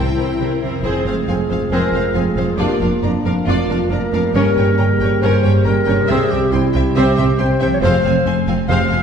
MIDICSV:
0, 0, Header, 1, 10, 480
1, 0, Start_track
1, 0, Key_signature, -4, "minor"
1, 0, Tempo, 439560
1, 917, Time_signature, 4, 2, 24, 8
1, 4748, Tempo, 433839
1, 9926, End_track
2, 0, Start_track
2, 0, Title_t, "Violin section"
2, 0, Program_c, 0, 48
2, 0, Note_on_c, 0, 79, 42
2, 426, Note_off_c, 0, 79, 0
2, 915, Note_on_c, 0, 72, 44
2, 1139, Note_off_c, 0, 72, 0
2, 1167, Note_on_c, 0, 77, 37
2, 1255, Note_off_c, 0, 77, 0
2, 1412, Note_on_c, 0, 80, 35
2, 1500, Note_off_c, 0, 80, 0
2, 1659, Note_on_c, 0, 77, 38
2, 1746, Note_off_c, 0, 77, 0
2, 1889, Note_on_c, 0, 72, 50
2, 2105, Note_off_c, 0, 72, 0
2, 2123, Note_on_c, 0, 77, 37
2, 2211, Note_off_c, 0, 77, 0
2, 2348, Note_on_c, 0, 80, 38
2, 2435, Note_off_c, 0, 80, 0
2, 2591, Note_on_c, 0, 77, 36
2, 2678, Note_off_c, 0, 77, 0
2, 2819, Note_on_c, 0, 74, 43
2, 3048, Note_off_c, 0, 74, 0
2, 3066, Note_on_c, 0, 77, 38
2, 3154, Note_off_c, 0, 77, 0
2, 3298, Note_on_c, 0, 82, 30
2, 3385, Note_off_c, 0, 82, 0
2, 3553, Note_on_c, 0, 77, 34
2, 3641, Note_off_c, 0, 77, 0
2, 3805, Note_on_c, 0, 74, 53
2, 4022, Note_off_c, 0, 74, 0
2, 4039, Note_on_c, 0, 77, 38
2, 4126, Note_off_c, 0, 77, 0
2, 4282, Note_on_c, 0, 82, 34
2, 4369, Note_off_c, 0, 82, 0
2, 4519, Note_on_c, 0, 77, 41
2, 4607, Note_off_c, 0, 77, 0
2, 4744, Note_on_c, 0, 73, 49
2, 4971, Note_off_c, 0, 73, 0
2, 4990, Note_on_c, 0, 79, 41
2, 5079, Note_off_c, 0, 79, 0
2, 5217, Note_on_c, 0, 82, 37
2, 5306, Note_off_c, 0, 82, 0
2, 5471, Note_on_c, 0, 79, 39
2, 5559, Note_off_c, 0, 79, 0
2, 5716, Note_on_c, 0, 73, 50
2, 5940, Note_off_c, 0, 73, 0
2, 5952, Note_on_c, 0, 79, 44
2, 6041, Note_off_c, 0, 79, 0
2, 6179, Note_on_c, 0, 82, 37
2, 6267, Note_off_c, 0, 82, 0
2, 6412, Note_on_c, 0, 79, 44
2, 6500, Note_off_c, 0, 79, 0
2, 6654, Note_on_c, 0, 76, 58
2, 6887, Note_off_c, 0, 76, 0
2, 6907, Note_on_c, 0, 79, 44
2, 6996, Note_off_c, 0, 79, 0
2, 7149, Note_on_c, 0, 84, 38
2, 7237, Note_off_c, 0, 84, 0
2, 7387, Note_on_c, 0, 79, 49
2, 7475, Note_off_c, 0, 79, 0
2, 7633, Note_on_c, 0, 76, 57
2, 7858, Note_off_c, 0, 76, 0
2, 7860, Note_on_c, 0, 79, 50
2, 7949, Note_off_c, 0, 79, 0
2, 8106, Note_on_c, 0, 84, 45
2, 8194, Note_off_c, 0, 84, 0
2, 8354, Note_on_c, 0, 79, 46
2, 8442, Note_off_c, 0, 79, 0
2, 8613, Note_on_c, 0, 77, 68
2, 8827, Note_off_c, 0, 77, 0
2, 8857, Note_on_c, 0, 80, 43
2, 8945, Note_off_c, 0, 80, 0
2, 9085, Note_on_c, 0, 84, 44
2, 9174, Note_off_c, 0, 84, 0
2, 9316, Note_on_c, 0, 80, 50
2, 9404, Note_off_c, 0, 80, 0
2, 9572, Note_on_c, 0, 77, 61
2, 9785, Note_off_c, 0, 77, 0
2, 9799, Note_on_c, 0, 80, 43
2, 9888, Note_off_c, 0, 80, 0
2, 9926, End_track
3, 0, Start_track
3, 0, Title_t, "Violin section"
3, 0, Program_c, 1, 48
3, 0, Note_on_c, 1, 70, 36
3, 0, Note_on_c, 1, 72, 35
3, 173, Note_off_c, 1, 72, 0
3, 174, Note_off_c, 1, 70, 0
3, 186, Note_on_c, 1, 72, 30
3, 187, Note_on_c, 1, 70, 27
3, 415, Note_off_c, 1, 72, 0
3, 417, Note_off_c, 1, 70, 0
3, 428, Note_on_c, 1, 72, 30
3, 430, Note_on_c, 1, 70, 31
3, 662, Note_off_c, 1, 72, 0
3, 669, Note_off_c, 1, 70, 0
3, 675, Note_on_c, 1, 72, 32
3, 680, Note_on_c, 1, 70, 32
3, 912, Note_off_c, 1, 72, 0
3, 915, Note_off_c, 1, 70, 0
3, 916, Note_on_c, 1, 68, 48
3, 1140, Note_off_c, 1, 68, 0
3, 1153, Note_on_c, 1, 72, 29
3, 1241, Note_off_c, 1, 72, 0
3, 1397, Note_on_c, 1, 77, 33
3, 1484, Note_off_c, 1, 77, 0
3, 1631, Note_on_c, 1, 72, 36
3, 1718, Note_off_c, 1, 72, 0
3, 1878, Note_on_c, 1, 68, 48
3, 2099, Note_off_c, 1, 68, 0
3, 2122, Note_on_c, 1, 72, 32
3, 2210, Note_off_c, 1, 72, 0
3, 2337, Note_on_c, 1, 77, 38
3, 2425, Note_off_c, 1, 77, 0
3, 2595, Note_on_c, 1, 72, 38
3, 2682, Note_off_c, 1, 72, 0
3, 2824, Note_on_c, 1, 65, 44
3, 3051, Note_off_c, 1, 65, 0
3, 3081, Note_on_c, 1, 70, 31
3, 3168, Note_off_c, 1, 70, 0
3, 3317, Note_on_c, 1, 74, 34
3, 3404, Note_off_c, 1, 74, 0
3, 3549, Note_on_c, 1, 70, 38
3, 3636, Note_off_c, 1, 70, 0
3, 3774, Note_on_c, 1, 65, 49
3, 4005, Note_off_c, 1, 65, 0
3, 4035, Note_on_c, 1, 70, 34
3, 4122, Note_off_c, 1, 70, 0
3, 4277, Note_on_c, 1, 74, 36
3, 4364, Note_off_c, 1, 74, 0
3, 4522, Note_on_c, 1, 70, 41
3, 4609, Note_off_c, 1, 70, 0
3, 4757, Note_on_c, 1, 70, 45
3, 4978, Note_off_c, 1, 70, 0
3, 5008, Note_on_c, 1, 73, 34
3, 5097, Note_off_c, 1, 73, 0
3, 5247, Note_on_c, 1, 79, 35
3, 5335, Note_off_c, 1, 79, 0
3, 5504, Note_on_c, 1, 73, 38
3, 5592, Note_off_c, 1, 73, 0
3, 5727, Note_on_c, 1, 70, 59
3, 5946, Note_off_c, 1, 70, 0
3, 5964, Note_on_c, 1, 73, 38
3, 6052, Note_off_c, 1, 73, 0
3, 6213, Note_on_c, 1, 79, 38
3, 6301, Note_off_c, 1, 79, 0
3, 6449, Note_on_c, 1, 73, 51
3, 6538, Note_off_c, 1, 73, 0
3, 6693, Note_on_c, 1, 72, 50
3, 6908, Note_off_c, 1, 72, 0
3, 6940, Note_on_c, 1, 76, 39
3, 7029, Note_off_c, 1, 76, 0
3, 7163, Note_on_c, 1, 79, 42
3, 7252, Note_off_c, 1, 79, 0
3, 7416, Note_on_c, 1, 76, 47
3, 7504, Note_off_c, 1, 76, 0
3, 7645, Note_on_c, 1, 72, 61
3, 7864, Note_off_c, 1, 72, 0
3, 7873, Note_on_c, 1, 76, 41
3, 7961, Note_off_c, 1, 76, 0
3, 8110, Note_on_c, 1, 79, 50
3, 8199, Note_off_c, 1, 79, 0
3, 8340, Note_on_c, 1, 76, 49
3, 8429, Note_off_c, 1, 76, 0
3, 8590, Note_on_c, 1, 72, 57
3, 8815, Note_off_c, 1, 72, 0
3, 8824, Note_on_c, 1, 77, 41
3, 8913, Note_off_c, 1, 77, 0
3, 9077, Note_on_c, 1, 80, 46
3, 9166, Note_off_c, 1, 80, 0
3, 9315, Note_on_c, 1, 77, 44
3, 9403, Note_off_c, 1, 77, 0
3, 9541, Note_on_c, 1, 72, 57
3, 9769, Note_off_c, 1, 72, 0
3, 9779, Note_on_c, 1, 77, 45
3, 9868, Note_off_c, 1, 77, 0
3, 9926, End_track
4, 0, Start_track
4, 0, Title_t, "Clarinet"
4, 0, Program_c, 2, 71
4, 917, Note_on_c, 2, 68, 61
4, 1831, Note_off_c, 2, 68, 0
4, 1878, Note_on_c, 2, 70, 58
4, 2362, Note_on_c, 2, 68, 55
4, 2379, Note_off_c, 2, 70, 0
4, 2839, Note_on_c, 2, 67, 64
4, 2855, Note_off_c, 2, 68, 0
4, 3067, Note_off_c, 2, 67, 0
4, 3074, Note_on_c, 2, 65, 53
4, 3319, Note_on_c, 2, 62, 56
4, 3335, Note_off_c, 2, 65, 0
4, 3779, Note_off_c, 2, 62, 0
4, 3786, Note_on_c, 2, 65, 56
4, 4252, Note_on_c, 2, 70, 58
4, 4268, Note_off_c, 2, 65, 0
4, 4739, Note_off_c, 2, 70, 0
4, 4745, Note_on_c, 2, 70, 70
4, 5715, Note_on_c, 2, 72, 63
4, 5731, Note_off_c, 2, 70, 0
4, 6197, Note_off_c, 2, 72, 0
4, 6207, Note_on_c, 2, 70, 67
4, 6692, Note_on_c, 2, 68, 74
4, 6709, Note_off_c, 2, 70, 0
4, 6924, Note_on_c, 2, 67, 67
4, 6941, Note_off_c, 2, 68, 0
4, 7151, Note_on_c, 2, 64, 66
4, 7168, Note_off_c, 2, 67, 0
4, 7633, Note_off_c, 2, 64, 0
4, 7647, Note_on_c, 2, 67, 78
4, 8113, Note_off_c, 2, 67, 0
4, 8126, Note_on_c, 2, 72, 72
4, 8357, Note_off_c, 2, 72, 0
4, 8372, Note_on_c, 2, 72, 74
4, 8423, Note_off_c, 2, 72, 0
4, 8500, Note_on_c, 2, 73, 69
4, 8549, Note_off_c, 2, 73, 0
4, 8605, Note_on_c, 2, 72, 83
4, 9236, Note_off_c, 2, 72, 0
4, 9542, Note_on_c, 2, 77, 84
4, 9926, Note_off_c, 2, 77, 0
4, 9926, End_track
5, 0, Start_track
5, 0, Title_t, "Harp"
5, 0, Program_c, 3, 46
5, 0, Note_on_c, 3, 48, 37
5, 0, Note_on_c, 3, 72, 31
5, 202, Note_on_c, 3, 55, 26
5, 435, Note_on_c, 3, 70, 28
5, 669, Note_off_c, 3, 72, 0
5, 682, Note_on_c, 3, 72, 27
5, 719, Note_on_c, 3, 41, 39
5, 771, Note_on_c, 3, 65, 31
5, 822, Note_on_c, 3, 68, 31
5, 856, Note_off_c, 3, 72, 0
5, 869, Note_on_c, 3, 72, 31
5, 936, Note_off_c, 3, 48, 0
5, 938, Note_off_c, 3, 70, 0
5, 942, Note_off_c, 3, 55, 0
5, 2626, Note_off_c, 3, 41, 0
5, 2639, Note_on_c, 3, 41, 42
5, 2678, Note_off_c, 3, 65, 0
5, 2691, Note_on_c, 3, 65, 31
5, 2745, Note_on_c, 3, 70, 33
5, 2803, Note_off_c, 3, 68, 0
5, 2827, Note_off_c, 3, 72, 0
5, 4552, Note_on_c, 3, 43, 43
5, 4598, Note_on_c, 3, 61, 34
5, 4644, Note_on_c, 3, 67, 35
5, 4672, Note_off_c, 3, 41, 0
5, 4688, Note_off_c, 3, 70, 0
5, 4697, Note_off_c, 3, 65, 0
5, 4701, Note_on_c, 3, 70, 35
5, 6482, Note_on_c, 3, 48, 48
5, 6534, Note_on_c, 3, 60, 39
5, 6568, Note_off_c, 3, 67, 0
5, 6582, Note_on_c, 3, 67, 39
5, 6596, Note_off_c, 3, 43, 0
5, 6619, Note_off_c, 3, 61, 0
5, 6633, Note_on_c, 3, 72, 41
5, 6671, Note_off_c, 3, 70, 0
5, 8405, Note_on_c, 3, 53, 49
5, 8444, Note_off_c, 3, 60, 0
5, 8457, Note_on_c, 3, 60, 44
5, 8506, Note_on_c, 3, 65, 44
5, 8519, Note_off_c, 3, 48, 0
5, 8558, Note_on_c, 3, 68, 42
5, 8569, Note_off_c, 3, 67, 0
5, 9926, Note_off_c, 3, 53, 0
5, 9926, Note_off_c, 3, 60, 0
5, 9926, Note_off_c, 3, 65, 0
5, 9926, Note_off_c, 3, 68, 0
5, 9926, Note_off_c, 3, 72, 0
5, 9926, End_track
6, 0, Start_track
6, 0, Title_t, "French horn section"
6, 0, Program_c, 4, 60
6, 0, Note_on_c, 4, 64, 38
6, 662, Note_off_c, 4, 64, 0
6, 923, Note_on_c, 4, 60, 44
6, 924, Note_on_c, 4, 65, 42
6, 2790, Note_off_c, 4, 60, 0
6, 2819, Note_on_c, 4, 58, 48
6, 4708, Note_off_c, 4, 65, 0
6, 4755, Note_on_c, 4, 67, 48
6, 6626, Note_off_c, 4, 58, 0
6, 6669, Note_on_c, 4, 60, 55
6, 8556, Note_off_c, 4, 67, 0
6, 8586, Note_on_c, 4, 56, 56
6, 8593, Note_off_c, 4, 60, 0
6, 8594, Note_on_c, 4, 68, 57
6, 8756, Note_off_c, 4, 56, 0
6, 8761, Note_off_c, 4, 68, 0
6, 9547, Note_on_c, 4, 56, 56
6, 9553, Note_on_c, 4, 68, 57
6, 9716, Note_off_c, 4, 56, 0
6, 9719, Note_off_c, 4, 68, 0
6, 9926, End_track
7, 0, Start_track
7, 0, Title_t, "Viola section"
7, 0, Program_c, 5, 48
7, 0, Note_on_c, 5, 60, 32
7, 0, Note_on_c, 5, 64, 32
7, 169, Note_off_c, 5, 60, 0
7, 171, Note_off_c, 5, 64, 0
7, 182, Note_on_c, 5, 60, 31
7, 184, Note_on_c, 5, 64, 32
7, 417, Note_off_c, 5, 64, 0
7, 421, Note_off_c, 5, 60, 0
7, 430, Note_on_c, 5, 64, 30
7, 435, Note_on_c, 5, 60, 30
7, 657, Note_off_c, 5, 60, 0
7, 660, Note_off_c, 5, 64, 0
7, 670, Note_on_c, 5, 60, 30
7, 673, Note_on_c, 5, 64, 32
7, 910, Note_off_c, 5, 60, 0
7, 911, Note_off_c, 5, 64, 0
7, 934, Note_on_c, 5, 60, 51
7, 1149, Note_off_c, 5, 60, 0
7, 1174, Note_on_c, 5, 60, 35
7, 1261, Note_off_c, 5, 60, 0
7, 1406, Note_on_c, 5, 60, 33
7, 1493, Note_off_c, 5, 60, 0
7, 1641, Note_on_c, 5, 60, 32
7, 1728, Note_off_c, 5, 60, 0
7, 1877, Note_on_c, 5, 60, 51
7, 2094, Note_off_c, 5, 60, 0
7, 2107, Note_on_c, 5, 60, 33
7, 2194, Note_off_c, 5, 60, 0
7, 2348, Note_on_c, 5, 60, 38
7, 2435, Note_off_c, 5, 60, 0
7, 2579, Note_on_c, 5, 60, 37
7, 2667, Note_off_c, 5, 60, 0
7, 2827, Note_on_c, 5, 62, 43
7, 3052, Note_off_c, 5, 62, 0
7, 3071, Note_on_c, 5, 62, 30
7, 3158, Note_off_c, 5, 62, 0
7, 3319, Note_on_c, 5, 62, 34
7, 3407, Note_off_c, 5, 62, 0
7, 3565, Note_on_c, 5, 62, 37
7, 3653, Note_off_c, 5, 62, 0
7, 3792, Note_on_c, 5, 62, 46
7, 4014, Note_off_c, 5, 62, 0
7, 4033, Note_on_c, 5, 62, 38
7, 4120, Note_off_c, 5, 62, 0
7, 4259, Note_on_c, 5, 62, 39
7, 4347, Note_off_c, 5, 62, 0
7, 4511, Note_on_c, 5, 62, 39
7, 4598, Note_off_c, 5, 62, 0
7, 4748, Note_on_c, 5, 61, 55
7, 4973, Note_off_c, 5, 61, 0
7, 4987, Note_on_c, 5, 61, 37
7, 5075, Note_off_c, 5, 61, 0
7, 5227, Note_on_c, 5, 61, 42
7, 5315, Note_off_c, 5, 61, 0
7, 5473, Note_on_c, 5, 61, 34
7, 5561, Note_off_c, 5, 61, 0
7, 5720, Note_on_c, 5, 61, 57
7, 5939, Note_off_c, 5, 61, 0
7, 5952, Note_on_c, 5, 61, 46
7, 6040, Note_off_c, 5, 61, 0
7, 6194, Note_on_c, 5, 61, 42
7, 6282, Note_off_c, 5, 61, 0
7, 6437, Note_on_c, 5, 61, 44
7, 6525, Note_off_c, 5, 61, 0
7, 6680, Note_on_c, 5, 60, 60
7, 6900, Note_off_c, 5, 60, 0
7, 6933, Note_on_c, 5, 60, 34
7, 7021, Note_off_c, 5, 60, 0
7, 7176, Note_on_c, 5, 60, 42
7, 7264, Note_off_c, 5, 60, 0
7, 7403, Note_on_c, 5, 60, 41
7, 7491, Note_off_c, 5, 60, 0
7, 7643, Note_on_c, 5, 60, 60
7, 7863, Note_off_c, 5, 60, 0
7, 7882, Note_on_c, 5, 60, 42
7, 7970, Note_off_c, 5, 60, 0
7, 8131, Note_on_c, 5, 60, 46
7, 8219, Note_off_c, 5, 60, 0
7, 8363, Note_on_c, 5, 60, 53
7, 8452, Note_off_c, 5, 60, 0
7, 8588, Note_on_c, 5, 60, 62
7, 8814, Note_off_c, 5, 60, 0
7, 8832, Note_on_c, 5, 60, 42
7, 8920, Note_off_c, 5, 60, 0
7, 9073, Note_on_c, 5, 60, 46
7, 9161, Note_off_c, 5, 60, 0
7, 9324, Note_on_c, 5, 60, 50
7, 9412, Note_off_c, 5, 60, 0
7, 9565, Note_on_c, 5, 60, 60
7, 9781, Note_off_c, 5, 60, 0
7, 9814, Note_on_c, 5, 60, 47
7, 9902, Note_off_c, 5, 60, 0
7, 9926, End_track
8, 0, Start_track
8, 0, Title_t, "Trombone section"
8, 0, Program_c, 6, 61
8, 914, Note_on_c, 6, 56, 40
8, 920, Note_on_c, 6, 53, 41
8, 2786, Note_off_c, 6, 56, 0
8, 2825, Note_on_c, 6, 58, 42
8, 4706, Note_off_c, 6, 53, 0
8, 4707, Note_off_c, 6, 58, 0
8, 4772, Note_on_c, 6, 55, 47
8, 4783, Note_on_c, 6, 49, 45
8, 6663, Note_on_c, 6, 48, 50
8, 6694, Note_off_c, 6, 49, 0
8, 8375, Note_off_c, 6, 48, 0
8, 8564, Note_on_c, 6, 53, 54
8, 8574, Note_on_c, 6, 48, 49
8, 8608, Note_off_c, 6, 55, 0
8, 8741, Note_off_c, 6, 53, 0
8, 8748, Note_off_c, 6, 48, 0
8, 9529, Note_on_c, 6, 48, 54
8, 9537, Note_on_c, 6, 53, 56
8, 9704, Note_off_c, 6, 48, 0
8, 9709, Note_off_c, 6, 53, 0
8, 9926, End_track
9, 0, Start_track
9, 0, Title_t, "Cello section"
9, 0, Program_c, 7, 48
9, 182, Note_on_c, 7, 48, 36
9, 270, Note_off_c, 7, 48, 0
9, 446, Note_on_c, 7, 48, 38
9, 533, Note_off_c, 7, 48, 0
9, 692, Note_on_c, 7, 48, 34
9, 779, Note_off_c, 7, 48, 0
9, 930, Note_on_c, 7, 41, 48
9, 1017, Note_off_c, 7, 41, 0
9, 1161, Note_on_c, 7, 41, 30
9, 1248, Note_off_c, 7, 41, 0
9, 1399, Note_on_c, 7, 41, 32
9, 1486, Note_off_c, 7, 41, 0
9, 1643, Note_on_c, 7, 41, 34
9, 1730, Note_off_c, 7, 41, 0
9, 1873, Note_on_c, 7, 41, 47
9, 1960, Note_off_c, 7, 41, 0
9, 2115, Note_on_c, 7, 41, 34
9, 2202, Note_off_c, 7, 41, 0
9, 2349, Note_on_c, 7, 41, 36
9, 2436, Note_off_c, 7, 41, 0
9, 2594, Note_on_c, 7, 41, 37
9, 2681, Note_off_c, 7, 41, 0
9, 2817, Note_on_c, 7, 41, 53
9, 2904, Note_off_c, 7, 41, 0
9, 3066, Note_on_c, 7, 41, 34
9, 3153, Note_off_c, 7, 41, 0
9, 3314, Note_on_c, 7, 41, 34
9, 3401, Note_off_c, 7, 41, 0
9, 3546, Note_on_c, 7, 41, 36
9, 3634, Note_off_c, 7, 41, 0
9, 3780, Note_on_c, 7, 41, 52
9, 3867, Note_off_c, 7, 41, 0
9, 4040, Note_on_c, 7, 41, 37
9, 4127, Note_off_c, 7, 41, 0
9, 4265, Note_on_c, 7, 41, 39
9, 4352, Note_off_c, 7, 41, 0
9, 4511, Note_on_c, 7, 41, 39
9, 4598, Note_off_c, 7, 41, 0
9, 4746, Note_on_c, 7, 43, 55
9, 4835, Note_off_c, 7, 43, 0
9, 4999, Note_on_c, 7, 43, 34
9, 5088, Note_off_c, 7, 43, 0
9, 5232, Note_on_c, 7, 43, 35
9, 5321, Note_off_c, 7, 43, 0
9, 5479, Note_on_c, 7, 43, 42
9, 5567, Note_off_c, 7, 43, 0
9, 5721, Note_on_c, 7, 43, 57
9, 5809, Note_off_c, 7, 43, 0
9, 5966, Note_on_c, 7, 43, 37
9, 6055, Note_off_c, 7, 43, 0
9, 6218, Note_on_c, 7, 43, 41
9, 6307, Note_off_c, 7, 43, 0
9, 6449, Note_on_c, 7, 43, 43
9, 6537, Note_off_c, 7, 43, 0
9, 6683, Note_on_c, 7, 48, 61
9, 6772, Note_off_c, 7, 48, 0
9, 6931, Note_on_c, 7, 48, 40
9, 7019, Note_off_c, 7, 48, 0
9, 7165, Note_on_c, 7, 48, 44
9, 7253, Note_off_c, 7, 48, 0
9, 7403, Note_on_c, 7, 48, 41
9, 7491, Note_off_c, 7, 48, 0
9, 7638, Note_on_c, 7, 48, 61
9, 7726, Note_off_c, 7, 48, 0
9, 7875, Note_on_c, 7, 48, 45
9, 7964, Note_off_c, 7, 48, 0
9, 8111, Note_on_c, 7, 48, 50
9, 8200, Note_off_c, 7, 48, 0
9, 8366, Note_on_c, 7, 48, 50
9, 8455, Note_off_c, 7, 48, 0
9, 8611, Note_on_c, 7, 41, 63
9, 8700, Note_off_c, 7, 41, 0
9, 8856, Note_on_c, 7, 41, 44
9, 8944, Note_off_c, 7, 41, 0
9, 9081, Note_on_c, 7, 41, 46
9, 9170, Note_off_c, 7, 41, 0
9, 9329, Note_on_c, 7, 41, 47
9, 9417, Note_off_c, 7, 41, 0
9, 9553, Note_on_c, 7, 41, 69
9, 9642, Note_off_c, 7, 41, 0
9, 9808, Note_on_c, 7, 41, 47
9, 9896, Note_off_c, 7, 41, 0
9, 9926, End_track
10, 0, Start_track
10, 0, Title_t, "Double bass section"
10, 0, Program_c, 8, 48
10, 0, Note_on_c, 8, 36, 37
10, 172, Note_off_c, 8, 36, 0
10, 909, Note_on_c, 8, 29, 44
10, 997, Note_off_c, 8, 29, 0
10, 1157, Note_on_c, 8, 29, 35
10, 1245, Note_off_c, 8, 29, 0
10, 1398, Note_on_c, 8, 29, 35
10, 1486, Note_off_c, 8, 29, 0
10, 1638, Note_on_c, 8, 29, 33
10, 1725, Note_off_c, 8, 29, 0
10, 1872, Note_on_c, 8, 29, 49
10, 1959, Note_off_c, 8, 29, 0
10, 2113, Note_on_c, 8, 29, 35
10, 2201, Note_off_c, 8, 29, 0
10, 2355, Note_on_c, 8, 29, 34
10, 2443, Note_off_c, 8, 29, 0
10, 2588, Note_on_c, 8, 29, 35
10, 2676, Note_off_c, 8, 29, 0
10, 2831, Note_on_c, 8, 29, 47
10, 2918, Note_off_c, 8, 29, 0
10, 3072, Note_on_c, 8, 29, 38
10, 3160, Note_off_c, 8, 29, 0
10, 3311, Note_on_c, 8, 29, 38
10, 3398, Note_off_c, 8, 29, 0
10, 3543, Note_on_c, 8, 29, 34
10, 3630, Note_off_c, 8, 29, 0
10, 3795, Note_on_c, 8, 29, 52
10, 3883, Note_off_c, 8, 29, 0
10, 4024, Note_on_c, 8, 29, 35
10, 4112, Note_off_c, 8, 29, 0
10, 4272, Note_on_c, 8, 29, 38
10, 4360, Note_off_c, 8, 29, 0
10, 4511, Note_on_c, 8, 29, 38
10, 4598, Note_off_c, 8, 29, 0
10, 4747, Note_on_c, 8, 31, 50
10, 4836, Note_off_c, 8, 31, 0
10, 4992, Note_on_c, 8, 31, 39
10, 5080, Note_off_c, 8, 31, 0
10, 5239, Note_on_c, 8, 31, 39
10, 5327, Note_off_c, 8, 31, 0
10, 5474, Note_on_c, 8, 31, 39
10, 5563, Note_off_c, 8, 31, 0
10, 5708, Note_on_c, 8, 31, 52
10, 5797, Note_off_c, 8, 31, 0
10, 5966, Note_on_c, 8, 31, 40
10, 6055, Note_off_c, 8, 31, 0
10, 6200, Note_on_c, 8, 31, 44
10, 6289, Note_off_c, 8, 31, 0
10, 6444, Note_on_c, 8, 31, 37
10, 6532, Note_off_c, 8, 31, 0
10, 6683, Note_on_c, 8, 36, 54
10, 6772, Note_off_c, 8, 36, 0
10, 6924, Note_on_c, 8, 36, 44
10, 7012, Note_off_c, 8, 36, 0
10, 7164, Note_on_c, 8, 36, 43
10, 7252, Note_off_c, 8, 36, 0
10, 7404, Note_on_c, 8, 36, 45
10, 7493, Note_off_c, 8, 36, 0
10, 7644, Note_on_c, 8, 36, 63
10, 7732, Note_off_c, 8, 36, 0
10, 7883, Note_on_c, 8, 36, 46
10, 7972, Note_off_c, 8, 36, 0
10, 8124, Note_on_c, 8, 36, 45
10, 8213, Note_off_c, 8, 36, 0
10, 8364, Note_on_c, 8, 36, 44
10, 8452, Note_off_c, 8, 36, 0
10, 8603, Note_on_c, 8, 29, 61
10, 8691, Note_off_c, 8, 29, 0
10, 8848, Note_on_c, 8, 29, 49
10, 8936, Note_off_c, 8, 29, 0
10, 9087, Note_on_c, 8, 29, 45
10, 9175, Note_off_c, 8, 29, 0
10, 9322, Note_on_c, 8, 29, 48
10, 9411, Note_off_c, 8, 29, 0
10, 9560, Note_on_c, 8, 29, 69
10, 9648, Note_off_c, 8, 29, 0
10, 9797, Note_on_c, 8, 29, 43
10, 9885, Note_off_c, 8, 29, 0
10, 9926, End_track
0, 0, End_of_file